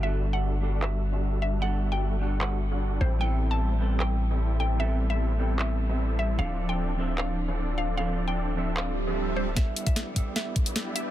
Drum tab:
HH |----------------|----------------|----------------|----------------|
CP |--------x-------|--------x-------|--------x-------|--------x-------|
SD |----------------|----------------|----------------|----------------|
BD |----------------|----------------|----------------|----------------|

HH |----------------|----------------|x-xxx-x-x-xxx-x-|
CP |--------x-------|--------x-------|----------------|
SD |----------------|----------------|o---o---o---o---|
BD |----------------|----------------|o--o--o---o-----|